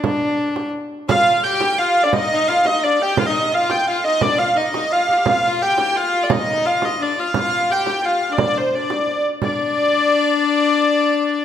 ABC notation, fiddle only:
X:1
M:3/4
L:1/16
Q:1/4=173
K:Dphr
V:1 name="Fiddle"
z12 | F4 G4 F3 D | E2 E2 F2 E2 D2 G2 | F E3 F4 F2 E2 |
D2 F2 E2 E2 F2 G/2 F/2 G | F2 F2 G2 G2 F4 | E2 E2 F4 D2 F2 | F4 G4 F3 D |
D4 D6 z2 | D12- | D12 |]